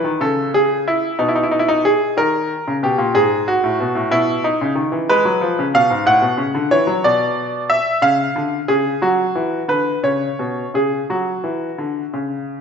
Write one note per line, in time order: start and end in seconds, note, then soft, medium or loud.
0.00 0.21 B4 medium
0.04 0.20 D#3 medium
0.20 0.92 C#3 medium
0.20 0.49 A4 medium
0.54 0.82 G#4 medium
0.88 1.15 E4 medium
1.19 1.90 B2 medium
1.19 1.27 D#4 medium
1.29 1.36 E4 medium
1.35 1.43 D#4 medium
1.43 1.51 E4 medium
1.51 1.59 D#4 medium
1.59 1.67 E4 medium
1.68 1.83 D#4 medium
1.85 2.13 G#4 medium
2.17 2.53 D#3 medium
2.17 2.73 A#4 medium
2.67 2.83 C#3 medium
2.83 2.99 B2 medium
2.83 3.11 G4 medium
2.98 3.14 A#2 medium
3.14 3.50 G#2 medium
3.14 3.48 G#4 medium
3.48 4.12 F#4 medium
3.64 3.79 A2 medium
3.80 3.96 B2 medium
3.95 4.11 A2 medium
4.11 4.47 B2 medium
4.11 4.45 E4 medium
4.44 4.72 D#4 medium
4.61 4.77 C#3 medium
4.75 4.92 D#3 medium
4.92 5.08 E3 medium
5.09 5.25 G#3 medium
5.09 5.65 B4 medium
5.25 5.41 F#3 medium
5.41 5.57 F3 medium
5.59 5.74 C#3 medium
5.74 5.90 B2 medium
5.74 6.02 F5 loud
5.90 6.06 G#2 medium
6.06 6.22 A2 medium
6.06 6.72 F#5 loud
6.22 6.38 B2 medium
6.38 6.54 C#3 medium
6.55 6.71 D3 medium
6.71 6.87 E3 medium
6.71 7.05 C#5 medium
6.87 7.03 F#3 medium
7.04 7.75 B2 medium
7.04 7.70 D5 medium
7.70 8.02 E5 medium
8.02 8.26 C#3 medium
8.02 8.59 F5 medium
8.36 8.60 D3 medium
8.68 8.93 C#3 medium
8.68 9.02 G#4 medium
9.02 9.26 F#3 medium
9.02 9.59 F#4 medium
9.35 9.60 E3 medium
9.68 9.93 D3 medium
9.68 9.98 B4 medium
10.03 10.28 C#3 medium
10.03 10.72 C#5 medium
10.39 10.64 B2 soft
10.74 10.99 C#3 soft
10.74 11.04 G#4 medium
11.10 11.34 F#3 soft
11.10 12.13 F#4 medium
11.44 11.68 E3 soft
11.78 12.03 D3 soft
12.13 12.61 C#3 soft